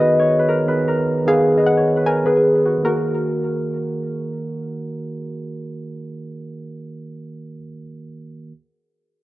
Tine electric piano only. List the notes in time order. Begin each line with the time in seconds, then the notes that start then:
Already playing: D#3 B4
0.00 B3 G#4 B4
0.65 D#3 B3 G#4 B4
1.25 D#3 B3 G#4 B4
1.56 D#3 B3 G#4 B4
2.24 D#3 B3 G#4 B4
2.78 D#3
2.83 A#3
2.88 F#4
2.93 A#4